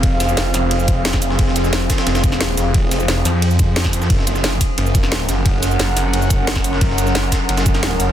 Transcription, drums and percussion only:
0.03 kick, closed hi-hat, ride
0.20 snare, closed hi-hat, open hi-hat, shaker
0.29 shaker
0.37 snare, closed hi-hat, ride
0.54 snare, open hi-hat, ride, shaker
0.71 closed hi-hat, ride
0.80 shaker
0.88 kick, closed hi-hat, ride, shaker
1.05 snare, closed hi-hat, ride
1.13 kick, snare
1.22 open hi-hat, ride, shaker
1.30 snare
1.39 kick, closed hi-hat, ride
1.47 snare
1.56 snare, closed hi-hat, ride, shaker
1.64 snare, shaker
1.73 snare, closed hi-hat, ride
1.81 ride
1.90 kick, snare, open hi-hat, ride, shaker
1.98 snare, ride
2.07 snare, closed hi-hat, ride
2.15 snare, ride, shaker
2.24 kick, closed hi-hat, ride, shaker
2.32 snare
2.40 snare, closed hi-hat, ride
2.57 snare, open hi-hat, ride, shaker
2.74 kick, closed hi-hat, ride
2.91 snare, closed hi-hat, open hi-hat, shaker
3.00 shaker
3.08 snare, closed hi-hat, ride
3.25 snare, open hi-hat, ride, shaker
3.42 closed hi-hat, ride
3.51 shaker
3.59 kick, closed hi-hat, ride, shaker
3.76 snare, closed hi-hat, ride
3.85 kick, snare
3.93 open hi-hat, ride, shaker
4.02 snare, shaker
4.10 kick, closed hi-hat, ride
4.19 snare
4.27 snare, closed hi-hat, ride, shaker
4.35 snare, shaker
4.44 snare, closed hi-hat, ride
4.52 ride
4.61 kick, open hi-hat, ride, shaker
4.78 closed hi-hat, ride
4.86 shaker
4.95 kick, closed hi-hat, ride, shaker
5.03 snare
5.12 snare, closed hi-hat, ride
5.29 snare, open hi-hat, ride, shaker
5.46 kick, closed hi-hat, ride
5.63 snare, closed hi-hat, open hi-hat, shaker
5.71 shaker
5.79 snare, closed hi-hat, ride
5.96 snare, open hi-hat, ride, shaker
6.13 closed hi-hat, ride
6.22 shaker
6.30 kick, closed hi-hat, ride, shaker
6.47 snare, closed hi-hat, ride
6.56 kick, snare
6.64 open hi-hat, ride, shaker
6.73 snare
6.81 kick, closed hi-hat, ride
6.90 snare
6.98 snare, closed hi-hat, ride, shaker
7.07 snare, shaker
7.15 snare, closed hi-hat, ride
7.24 ride
7.32 kick, snare, open hi-hat, ride, shaker
7.49 snare, closed hi-hat, ride
7.57 snare, ride, shaker
7.66 kick, closed hi-hat, shaker
7.74 snare, ride
7.83 snare, closed hi-hat, ride
8.00 snare, open hi-hat, ride, shaker

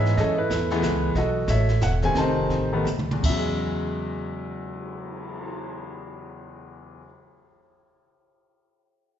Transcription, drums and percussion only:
0.05 snare
0.17 brush sweep, kick, snare
0.50 kick, snare, hi-hat pedal
0.70 snare
0.83 kick, snare, hi-hat pedal
1.15 brush sweep, kick, snare
1.48 kick, snare, hi-hat pedal
1.69 snare
1.81 kick, snare, hi-hat pedal
2.02 snare
2.15 brush sweep, kick, snare
2.50 kick, snare
2.87 hi-hat pedal, mid tom
2.99 mid tom
3.11 mid tom
3.23 kick, crash
3.47 cymbal swell

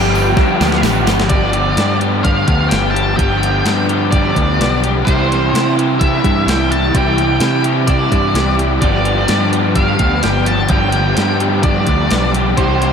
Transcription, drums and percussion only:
0.15 tambourine
0.37 kick, snare, tambourine
0.61 snare, tambourine
0.72 snare
0.83 snare, tambourine
1.07 snare, tambourine
1.20 snare
1.30 kick, closed hi-hat
1.53 closed hi-hat
1.77 snare, closed hi-hat
2.01 closed hi-hat
2.25 kick, closed hi-hat
2.48 kick, closed hi-hat
2.71 snare, closed hi-hat
2.96 closed hi-hat
3.19 kick, closed hi-hat
3.43 snare, closed hi-hat
3.66 snare, closed hi-hat
3.89 closed hi-hat
4.12 kick, closed hi-hat
4.36 kick, closed hi-hat
4.61 snare, closed hi-hat
4.84 closed hi-hat
5.07 kick, closed hi-hat
5.32 snare, closed hi-hat
5.55 snare, closed hi-hat
5.79 closed hi-hat
6.01 kick, closed hi-hat
6.24 kick, closed hi-hat
6.48 snare, closed hi-hat
6.72 closed hi-hat
6.95 kick, closed hi-hat
7.18 snare, closed hi-hat
7.40 snare, closed hi-hat
7.64 closed hi-hat
7.88 kick, closed hi-hat
8.12 kick, closed hi-hat
8.35 snare, closed hi-hat
8.59 closed hi-hat
8.82 kick, closed hi-hat
9.05 closed hi-hat
9.28 snare, closed hi-hat
9.53 closed hi-hat
9.75 kick, closed hi-hat
9.99 kick, closed hi-hat
10.23 snare, closed hi-hat
10.46 closed hi-hat
10.69 kick, closed hi-hat
10.92 snare, closed hi-hat
11.17 snare, closed hi-hat
11.40 closed hi-hat
11.63 kick, closed hi-hat
11.87 kick, closed hi-hat
12.11 snare, closed hi-hat
12.35 closed hi-hat
12.57 kick, closed hi-hat
12.82 snare, closed hi-hat

